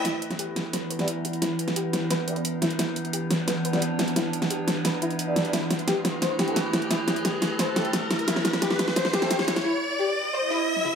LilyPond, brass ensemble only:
\new Staff \with { instrumentName = "Brass ensemble" } { \time 4/4 \key e \minor \tempo 4 = 175 r2 r8. <b e' g' d''>16 r4 | r2 r8 <b e' g' d''>16 r4 r16 | r2 r8. <b e' g' d''>16 r4 | r2. r16 <b e' g' d''>8. |
r2 r8. <e' a' c'' g''>16 r4 | r2 r8 <e' a' c'' g''>16 r4 r16 | r2 r8. <e' a' c'' g''>16 r4 | r1 | }